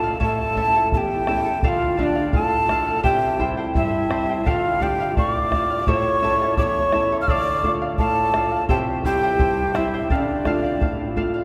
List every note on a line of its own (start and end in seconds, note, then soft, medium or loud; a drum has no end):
0.00 0.18 A2 medium
0.00 0.13 A3 soft
0.00 0.13 D4 soft
0.00 0.13 F4 medium
0.00 0.17 A4 medium
0.00 0.19 F5 medium
0.00 0.18 A5 medium
0.06 0.20 D5 soft
0.20 0.89 A2 medium
0.20 0.56 E4 medium
0.20 0.56 A4 medium
0.20 0.88 A4 medium
0.20 0.56 C#5 medium
0.20 0.56 E5 medium
0.20 0.56 A5 medium
0.20 0.89 A5 medium
0.20 bombo low medium
0.55 1.12 A3 medium
0.55 1.13 C#4 soft
0.55 1.13 E4 medium
0.55 0.74 E4 medium
0.55 0.74 A4 medium
0.55 0.74 E5 medium
0.55 0.73 A5 medium
0.55 bombo low medium
0.75 0.93 E4 soft
0.75 0.93 A4 soft
0.75 0.92 A5 medium
0.92 1.60 E2 medium
0.92 1.27 E4 medium
0.92 1.32 G4 medium
0.92 1.27 A4 medium
0.92 1.27 E5 medium
0.92 0.98 A5 medium
0.92 1.28 A5 medium
0.92 bombo low medium
0.97 1.64 G5 medium
1.27 1.56 A3 soft
1.27 1.56 C#4 soft
1.27 1.45 E4 medium
1.27 1.56 E4 medium
1.27 1.44 A4 medium
1.27 1.45 E5 medium
1.27 1.43 A5 medium
1.27 bombo rim medium
1.45 1.63 E4 soft
1.45 1.62 A4 medium
1.45 1.62 A5 medium
1.63 2.31 D3 medium
1.63 2.00 F4 medium
1.63 1.96 A4 medium
1.63 1.97 D5 medium
1.63 1.98 F5 medium
1.63 1.69 G5 medium
1.63 bombo low medium
1.68 2.01 F5 medium
1.97 2.55 A3 medium
1.97 2.33 D4 medium
1.97 2.55 D4 medium
1.97 2.55 F4 medium
1.97 2.15 A4 medium
1.97 2.16 D5 medium
1.97 2.04 E5 medium
1.97 2.14 F5 medium
1.97 bombo low soft
2.03 2.34 D5 medium
2.15 2.32 D5 soft
2.15 2.32 F5 medium
2.32 3.02 A2 medium
2.32 2.68 A4 medium
2.32 3.00 A4 medium
2.32 2.68 D5 medium
2.32 2.69 F5 medium
2.32 3.01 A5 loud
2.32 bombo low medium
2.69 2.97 A3 soft
2.69 2.97 D4 medium
2.69 2.98 F4 medium
2.69 2.87 A4 medium
2.69 2.87 D5 medium
2.69 2.85 F5 medium
2.69 bombo rim medium
2.86 3.03 D5 soft
2.86 3.03 F5 medium
3.03 3.73 C3 medium
3.03 3.39 E4 medium
3.03 3.39 G4 medium
3.03 3.45 G4 medium
3.03 3.39 C5 medium
3.03 3.38 E5 medium
3.03 3.39 G5 medium
3.03 3.45 G5 medium
3.03 bombo low medium
3.38 3.95 G3 soft
3.38 3.95 C4 medium
3.38 3.96 E4 medium
3.38 3.57 E4 medium
3.38 3.57 C5 medium
3.38 3.57 E5 medium
3.38 3.56 G5 medium
3.38 bombo low soft
3.57 3.75 E4 soft
3.57 3.75 C5 medium
3.57 3.75 G5 medium
3.74 4.43 G2 medium
3.74 4.47 E4 medium
3.74 4.10 E4 medium
3.74 4.10 C5 medium
3.74 4.09 E5 medium
3.74 4.48 E5 loud
3.74 4.10 G5 medium
3.74 bombo low medium
4.08 4.37 G3 soft
4.08 4.37 C4 soft
4.08 4.38 E4 medium
4.08 4.28 E4 medium
4.08 4.28 C5 medium
4.08 4.28 E5 medium
4.08 4.28 G5 medium
4.08 bombo rim medium
4.29 4.45 E4 soft
4.29 4.46 C5 soft
4.29 4.46 G5 medium
4.45 5.13 D3 medium
4.45 4.82 F4 medium
4.45 4.80 A4 medium
4.45 4.81 D5 medium
4.45 4.81 F5 medium
4.45 4.51 G5 medium
4.45 bombo low medium
4.50 4.84 F5 medium
4.81 5.37 A3 medium
4.81 5.37 D4 soft
4.81 5.37 F4 medium
4.81 5.16 G4 medium
4.81 4.98 A4 medium
4.81 4.99 D5 medium
4.81 4.99 F5 medium
4.81 5.17 G5 medium
4.81 bombo low soft
5.00 5.16 D5 soft
5.00 5.17 F5 medium
5.15 5.84 A2 medium
5.15 5.52 A4 medium
5.15 5.88 D5 medium
5.15 5.52 D5 medium
5.15 5.52 F5 medium
5.15 5.31 C#6 medium
5.15 bombo low medium
5.31 5.90 D6 medium
5.50 5.79 A3 medium
5.50 5.79 D4 soft
5.50 5.80 F4 medium
5.50 5.70 A4 soft
5.50 bombo rim medium
5.50 bombo low medium
5.54 5.70 D5 medium
5.54 5.69 F5 medium
5.70 5.87 D5 soft
5.70 5.87 F5 soft
5.87 6.55 A2 medium
5.87 6.22 E4 medium
5.87 6.23 A4 medium
5.87 6.57 C#5 loud
5.87 6.22 C#5 medium
5.87 6.21 E5 medium
5.87 6.23 A5 medium
5.87 6.57 C#6 loud
5.87 bombo low medium
6.22 6.78 A3 medium
6.22 6.78 C#4 soft
6.22 6.79 E4 medium
6.22 6.40 E4 medium
6.22 6.41 A4 medium
6.22 6.40 E5 medium
6.22 6.40 A5 medium
6.42 6.57 E4 soft
6.42 6.57 A4 medium
6.42 6.58 A5 medium
6.57 7.26 E2 medium
6.57 6.92 E4 medium
6.57 6.93 A4 medium
6.57 7.17 C#5 medium
6.57 6.92 E5 medium
6.57 6.93 A5 medium
6.57 6.64 D6 medium
6.57 bombo low medium
6.63 7.17 C#6 medium
6.92 7.21 A3 soft
6.92 7.21 C#4 soft
6.92 7.21 E4 medium
6.92 7.11 E4 medium
6.92 7.11 A4 medium
6.92 7.11 E5 medium
6.92 7.11 A5 medium
6.92 bombo rim medium
7.12 7.28 E4 soft
7.12 7.27 A4 soft
7.12 7.29 A5 soft
7.21 7.29 F5 medium
7.21 7.29 F6 medium
7.28 7.96 D3 medium
7.28 7.63 A4 medium
7.28 7.71 D5 medium
7.28 7.63 D5 medium
7.28 7.64 F5 medium
7.28 7.71 D6 loud
7.28 7.33 E6 medium
7.28 bombo low medium
7.63 8.20 A3 medium
7.63 8.20 D4 soft
7.63 8.20 F4 medium
7.63 7.81 A4 medium
7.63 7.81 D5 medium
7.63 7.80 F5 medium
7.63 bombo low soft
7.82 7.99 D5 soft
7.82 7.99 F5 medium
7.98 8.67 A2 medium
7.98 8.65 A4 medium
7.98 8.33 A4 medium
7.98 8.34 D5 medium
7.98 8.35 F5 medium
7.98 8.65 A5 loud
7.98 bombo low medium
8.34 8.62 A3 medium
8.34 8.62 D4 soft
8.34 8.62 F4 medium
8.34 8.52 A4 medium
8.34 8.51 D5 medium
8.34 8.50 F5 medium
8.34 bombo rim medium
8.52 8.68 D5 soft
8.52 8.69 F5 medium
8.69 9.37 C3 medium
8.69 9.04 E4 medium
8.69 9.04 G4 medium
8.69 8.78 A4 medium
8.69 9.05 C5 medium
8.69 9.03 E5 medium
8.69 9.04 G5 medium
8.69 8.78 A5 medium
8.69 bombo low medium
9.04 9.61 G3 medium
9.04 9.61 C4 soft
9.04 9.22 E4 medium
9.04 9.61 E4 medium
9.04 9.76 G4 medium
9.04 9.22 C5 medium
9.04 9.22 E5 medium
9.04 9.21 G5 medium
9.04 9.77 G5 loud
9.04 bombo low medium
9.22 9.38 E4 soft
9.22 9.39 C5 medium
9.22 9.39 G5 medium
9.38 10.08 G2 medium
9.38 9.73 E4 medium
9.38 9.74 C5 medium
9.38 9.73 E5 soft
9.38 9.75 G5 medium
9.38 bombo low medium
9.74 10.03 G3 medium
9.74 10.03 C4 soft
9.74 10.09 E4 medium
9.74 9.92 E4 medium
9.74 10.03 E4 medium
9.74 9.93 C5 medium
9.74 9.92 E5 medium
9.74 10.10 E5 medium
9.74 9.93 G5 medium
9.74 bombo rim medium
9.94 10.10 E4 soft
9.94 10.10 C5 soft
9.94 10.11 G5 medium
10.09 10.78 D3 medium
10.09 10.25 C#4 medium
10.09 10.44 A4 medium
10.09 10.45 D5 medium
10.09 10.17 E5 medium
10.09 10.46 F5 medium
10.09 bombo low medium
10.16 11.13 D5 medium
10.25 11.12 D4 medium
10.45 11.02 A3 soft
10.45 11.02 D4 soft
10.45 11.02 F4 medium
10.45 10.63 A4 medium
10.45 10.62 D5 medium
10.45 10.61 F5 medium
10.45 bombo rim medium
10.45 bombo low medium
10.62 10.80 D5 soft
10.62 10.81 F5 soft
10.80 11.44 A2 medium
10.80 11.15 A4 soft
10.80 11.16 D5 medium
10.80 11.16 F5 medium
10.80 bombo low medium
11.16 11.44 A3 medium
11.16 11.44 D4 soft
11.16 11.44 F4 medium
11.16 11.34 A4 medium
11.16 11.34 D5 medium
11.16 11.33 F5 medium
11.16 bombo low medium
11.34 11.44 D5 soft
11.34 11.44 F5 medium